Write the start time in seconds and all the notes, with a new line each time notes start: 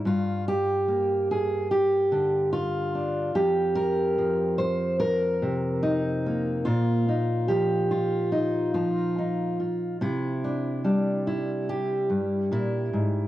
0.05 G2 F4
0.48 G4
0.88 A#3
1.31 G#4
1.71 G4
2.12 D3
2.53 F4
2.95 D4
3.35 F2 G4
3.75 A#4
4.18 F3
4.58 C5
5.00 A#4
5.42 C3
5.83 D#4
6.26 A#3
6.65 A#2 F4
7.08 D#4
7.48 F3 G4
7.91 F4
8.32 D#4
8.74 F3 F4
9.18 D#4
9.60 F4
10.01 C3 E4
10.44 D4
10.84 G3 D4
11.27 E4
11.69 G4
12.10 G2
12.51 A#2 E4
12.93 G#2